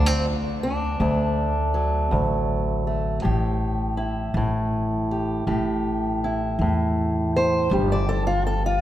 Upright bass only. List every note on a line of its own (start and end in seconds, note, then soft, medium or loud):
0.00 0.96 D2 loud
1.00 2.08 D2 medium
2.12 3.20 A1 medium
3.25 4.32 A1 loud
4.34 5.43 A1 loud
5.47 6.55 A1 medium
6.59 7.67 E2 medium
7.71 8.79 G1 loud